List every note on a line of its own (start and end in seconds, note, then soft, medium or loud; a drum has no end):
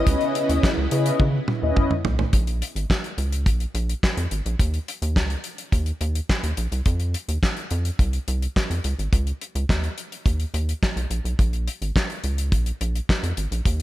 0.00 2.31 C#3 medium
0.00 2.31 B3 medium
0.00 0.69 C#4 medium
0.00 0.69 E4 medium
0.00 2.30 E4 loud
0.00 0.69 B4 medium
0.00 0.69 D#5 loud
0.00 2.29 D#5 medium
0.07 0.16 C#2 loud
0.07 kick loud
0.07 closed hi-hat loud
0.21 closed hi-hat soft
0.35 closed hi-hat medium
0.49 0.59 D#2 medium
0.49 closed hi-hat medium
0.63 kick loud
0.63 snare loud
0.63 clap medium
0.77 0.87 C#2 loud
0.91 1.11 C#3 medium
0.91 1.23 C#4 medium
0.91 1.23 E4 medium
0.91 1.23 B4 medium
0.91 1.23 D#5 medium
0.91 closed hi-hat medium
1.06 closed hi-hat medium
1.20 1.39 C#3 loud
1.20 kick loud
1.20 high tom medium
1.48 mid tom medium
1.62 1.72 D#2 medium
1.62 1.93 C#4 medium
1.62 1.94 E4 medium
1.62 1.94 B4 medium
1.62 1.94 D#5 medium
1.76 kick loud
1.76 mid tom medium
1.91 mid tom medium
2.05 2.24 B1 medium
2.05 floor tom loud
2.19 floor tom loud
2.33 2.62 A#1 loud
2.33 kick loud
2.33 closed hi-hat medium
2.47 closed hi-hat soft
2.62 closed hi-hat medium
2.75 2.85 G#1 medium
2.75 closed hi-hat medium
2.90 kick loud
2.90 snare medium
2.90 clap medium
3.04 closed hi-hat soft
3.18 3.48 C#2 medium
3.18 closed hi-hat medium
3.32 closed hi-hat medium
3.46 3.66 A#1 medium
3.46 kick loud
3.46 closed hi-hat medium
3.60 closed hi-hat soft
3.74 3.94 A#1 loud
3.74 closed hi-hat medium
3.89 closed hi-hat soft
4.03 kick loud
4.03 snare loud
4.03 clap medium
4.17 4.27 F2 medium
4.17 closed hi-hat medium
4.31 4.41 G#1 medium
4.31 closed hi-hat medium
4.46 4.55 A#1 medium
4.46 closed hi-hat soft
4.59 4.79 D#2 loud
4.59 kick loud
4.59 closed hi-hat loud
4.74 closed hi-hat soft
4.88 closed hi-hat medium
5.02 5.18 D#2 loud
5.02 closed hi-hat medium
5.16 5.36 C#2 medium
5.16 kick loud
5.16 snare medium
5.16 clap medium
5.30 closed hi-hat soft
5.44 closed hi-hat medium
5.58 closed hi-hat medium
5.72 5.92 D#2 medium
5.72 kick loud
5.72 closed hi-hat loud
5.86 closed hi-hat soft
6.01 6.20 D#2 medium
6.01 closed hi-hat medium
6.15 closed hi-hat medium
6.29 kick loud
6.29 snare loud
6.29 clap medium
6.43 6.53 D#2 medium
6.43 closed hi-hat medium
6.57 6.67 A#1 medium
6.57 closed hi-hat medium
6.72 6.82 C2 medium
6.72 closed hi-hat soft
6.86 7.15 F2 loud
6.86 kick loud
6.86 closed hi-hat loud
7.00 closed hi-hat soft
7.14 closed hi-hat medium
7.28 7.38 D#2 medium
7.28 closed hi-hat medium
7.43 kick loud
7.43 snare medium
7.43 clap medium
7.57 closed hi-hat soft
7.71 7.90 F2 loud
7.71 closed hi-hat medium
7.85 closed hi-hat medium
7.99 8.19 C2 loud
7.99 kick loud
7.99 closed hi-hat medium
8.13 closed hi-hat soft
8.28 8.47 C2 loud
8.28 closed hi-hat medium
8.42 closed hi-hat soft
8.56 kick loud
8.56 snare loud
8.56 clap medium
8.70 8.80 F2 medium
8.70 closed hi-hat medium
8.84 8.94 C#2 medium
8.84 closed hi-hat medium
8.99 9.08 G#1 medium
8.99 closed hi-hat soft
9.13 9.32 C#2 loud
9.13 kick loud
9.13 closed hi-hat medium
9.27 closed hi-hat soft
9.41 closed hi-hat medium
9.55 9.65 C#2 medium
9.55 closed hi-hat medium
9.69 9.89 D#2 medium
9.69 kick loud
9.69 snare medium
9.69 clap medium
9.84 closed hi-hat soft
9.98 closed hi-hat medium
10.12 closed hi-hat medium
10.26 10.45 D#2 medium
10.26 kick loud
10.26 closed hi-hat medium
10.40 closed hi-hat soft
10.54 10.73 D#2 loud
10.54 closed hi-hat medium
10.69 closed hi-hat soft
10.83 kick loud
10.83 snare loud
10.83 clap medium
10.96 11.06 B1 medium
10.96 closed hi-hat medium
11.10 11.20 A#1 medium
11.10 closed hi-hat medium
11.25 11.34 B1 medium
11.25 closed hi-hat soft
11.39 11.68 A#1 loud
11.39 kick loud
11.39 closed hi-hat loud
11.53 closed hi-hat soft
11.68 closed hi-hat medium
11.82 11.91 G#1 medium
11.82 closed hi-hat soft
11.96 kick loud
11.96 snare medium
11.96 clap medium
12.10 closed hi-hat soft
12.24 12.54 C#2 medium
12.24 closed hi-hat medium
12.38 closed hi-hat medium
12.52 12.72 A#1 medium
12.52 kick loud
12.52 closed hi-hat medium
12.66 closed hi-hat soft
12.81 13.00 A#1 medium
12.81 closed hi-hat medium
12.96 closed hi-hat soft
13.09 kick loud
13.09 snare loud
13.09 clap medium
13.23 13.33 F2 medium
13.23 closed hi-hat medium
13.37 13.47 G#1 medium
13.37 closed hi-hat medium
13.51 13.61 A#1 medium
13.51 closed hi-hat soft
13.65 13.82 D#2 loud
13.65 kick loud
13.65 closed hi-hat loud